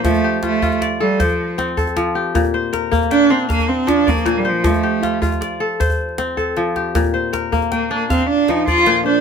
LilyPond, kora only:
<<
  \new Staff \with { instrumentName = "Kora" } { \time 12/8 \key f \major \tempo 4. = 104 c''8 g'8 f'4 d''4 c''4. a'4 g'8~ | g'8 c''8 bes'4 g''4 f''4. d''4 c''8~ | c''8 g'8 f'4 d''4 c''4. a'4 g'8~ | g'8 c''8 bes'4 g''4 f''4. d''4 c''8 | }
  \new Staff \with { instrumentName = "Kora" } { \clef bass \time 12/8 \key f \major f4 r8 f'4 a'4 r8 c'4 f4 | bes,4 r8 bes4 d'4 r8 f4 bes,4 | f4 r8 f'4 a'4 r8 c'4 f4 | bes,4 r8 bes4 d'4 r8 f4 bes,4 | }
>>